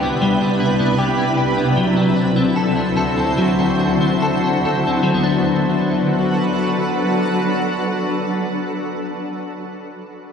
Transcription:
0.00 1.74 C2 medium
0.00 1.74 C3 medium
0.00 0.20 G3 medium
0.00 0.40 B3 medium
0.00 1.74 D4 medium
0.00 0.59 E4 soft
0.00 5.05 E4 medium
0.00 0.97 G4 medium
0.00 1.74 B4 medium
0.22 1.76 G3 medium
0.41 0.78 B3 medium
0.60 1.17 E4 medium
0.79 1.56 B3 medium
0.98 1.36 G4 medium
1.18 1.84 E4 medium
1.37 1.84 G4 medium
1.57 1.84 B3 medium
1.76 5.06 D2 medium
1.76 5.06 D3 medium
1.76 3.37 F#3 medium
1.76 5.05 F#4 medium
1.76 5.06 C5 medium
1.96 2.35 C4 soft
2.16 2.76 D4 medium
2.36 3.16 C4 medium
2.56 2.96 A4 medium
2.77 3.79 D4 soft
2.97 4.21 A4 medium
3.17 3.57 C4 soft
3.38 5.02 F#3 medium
3.59 3.99 C4 soft
3.79 4.43 D4 medium
4.01 4.86 C4 soft
4.22 4.64 A4 medium
4.44 5.23 D4 soft
4.65 5.18 A4 medium
4.87 5.14 C4 soft
5.03 9.38 F#3 medium
5.09 9.38 F#3 medium
5.09 9.38 D4 medium
5.09 9.38 F#4 medium
5.09 9.38 A4 medium
5.09 9.38 B4 medium
5.14 9.50 B3 medium
5.24 9.59 D4 medium

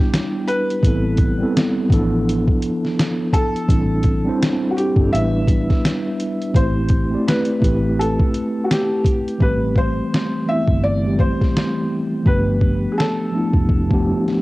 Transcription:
0.00 0.54 G3 medium
0.00 0.55 B3 medium
0.00 0.55 D4 medium
0.00 0.56 E4 medium
0.00 0.51 G4 loud
0.00 0.57 G4 medium
0.14 snare loud
0.14 closed hi-hat medium
0.48 1.51 B4 loud
0.48 closed hi-hat medium
0.70 closed hi-hat soft
0.82 1.42 A1 loud
0.82 1.25 G3 medium
0.82 1.25 B3 medium
0.82 1.26 C4 medium
0.82 1.27 E4 medium
0.82 kick loud
0.82 closed hi-hat medium
0.87 1.27 A4 medium
1.17 kick medium
1.17 closed hi-hat medium
1.38 1.90 G3 medium
1.38 1.89 B3 medium
1.38 1.91 C4 medium
1.38 1.91 E4 medium
1.43 1.92 A4 medium
1.57 snare loud
1.57 closed hi-hat medium
1.89 2.50 A1 loud
1.89 3.05 F3 medium
1.89 3.06 B3 medium
1.89 3.06 D4 medium
1.89 3.07 E4 medium
1.89 kick loud
1.89 closed hi-hat medium
1.94 3.07 A4 loud
2.29 closed hi-hat medium
2.48 kick medium
2.62 closed hi-hat medium
2.85 snare soft
2.99 snare loud
2.99 closed hi-hat medium
3.33 4.36 A4 loud
3.33 kick loud
3.33 closed hi-hat medium
3.56 closed hi-hat soft
3.68 4.28 A1 loud
3.68 4.11 G3 medium
3.68 4.11 C4 medium
3.68 4.12 D4 medium
3.68 4.12 E4 medium
3.68 kick loud
3.68 closed hi-hat medium
3.73 4.13 A4 medium
4.03 kick medium
4.03 closed hi-hat medium
4.24 4.77 G3 medium
4.24 4.78 C4 medium
4.24 4.78 D4 medium
4.24 4.79 E4 medium
4.29 4.80 C5 loud
4.42 snare loud
4.42 closed hi-hat medium
4.71 4.76 F#4 medium
4.77 5.13 G4 medium
4.77 closed hi-hat medium
4.96 5.09 G1 medium
4.96 5.10 G3 medium
4.96 5.12 C4 medium
4.96 5.12 D4 medium
4.96 5.13 E4 medium
4.96 kick medium
5.01 5.14 A4 medium
5.11 5.71 A1 loud
5.11 6.27 G3 medium
5.11 6.27 B3 medium
5.11 6.28 D4 medium
5.11 6.29 E4 medium
5.11 6.51 E5 loud
5.11 closed hi-hat medium
5.16 6.29 B4 medium
5.47 kick medium
5.47 closed hi-hat medium
5.70 kick medium
5.70 snare soft
5.85 snare loud
5.85 closed hi-hat medium
6.20 closed hi-hat medium
6.42 closed hi-hat soft
6.53 7.14 A1 loud
6.53 6.96 A3 medium
6.53 6.97 C4 medium
6.53 6.97 E4 medium
6.53 6.98 G4 medium
6.53 7.29 C5 medium
6.53 kick loud
6.53 closed hi-hat medium
6.58 6.99 C5 medium
6.89 kick medium
6.89 closed hi-hat medium
7.10 7.59 A3 medium
7.10 7.62 C4 medium
7.10 7.61 E4 medium
7.10 7.62 G4 medium
7.15 7.63 D5 medium
7.28 8.00 B4 medium
7.28 snare loud
7.28 closed hi-hat medium
7.45 closed hi-hat medium
7.60 8.21 A1 loud
7.60 8.76 A3 medium
7.60 7.69 B3 medium
7.60 8.77 E4 medium
7.60 8.78 G4 medium
7.60 kick loud
7.64 8.80 C4 medium
7.64 8.78 B4 medium
7.64 closed hi-hat medium
7.99 9.01 A4 medium
7.99 closed hi-hat medium
8.19 kick medium
8.34 closed hi-hat medium
8.64 8.69 F#4 medium
8.71 9.43 G4 medium
8.71 snare loud
8.71 closed hi-hat medium
9.04 kick loud
9.04 closed hi-hat medium
9.28 closed hi-hat soft
9.38 10.00 A1 loud
9.38 10.24 E3 medium
9.38 10.25 G3 medium
9.38 10.24 A3 medium
9.38 10.25 C4 medium
9.38 9.78 B4 medium
9.38 kick loud
9.43 10.26 G4 medium
9.76 10.50 C5 loud
9.76 kick medium
10.14 snare loud
10.46 10.89 E3 medium
10.46 10.89 A3 medium
10.46 10.90 B3 medium
10.46 10.91 C4 medium
10.46 10.81 E5 loud
10.51 10.91 E4 medium
10.68 11.27 G1 medium
10.68 kick medium
10.84 11.20 D5 loud
11.02 11.98 E3 medium
11.02 11.99 G3 medium
11.02 11.98 A3 medium
11.02 12.00 C4 medium
11.07 12.00 G4 medium
11.19 12.30 C5 loud
11.19 kick medium
11.41 kick medium
11.41 snare soft
11.57 snare loud
12.23 12.85 G1 loud
12.23 13.09 F3 medium
12.23 13.10 A3 medium
12.23 13.10 B3 medium
12.23 13.11 D4 medium
12.23 12.94 B4 medium
12.23 kick loud
12.28 13.11 G4 medium
12.61 kick medium
12.92 12.98 G#4 medium
12.98 14.42 A4 medium
12.98 snare medium
13.32 13.75 F3 medium
13.32 13.75 A3 medium
13.32 13.76 B3 medium
13.32 13.76 D4 medium
13.36 13.77 E4 medium
13.53 14.13 F1 medium
13.53 kick medium
13.69 kick medium
13.89 14.42 F3 medium
13.89 14.42 A3 medium
13.89 14.42 B3 medium
13.89 14.42 D4 medium
13.89 kick medium
13.94 14.42 G4 loud
14.28 snare soft

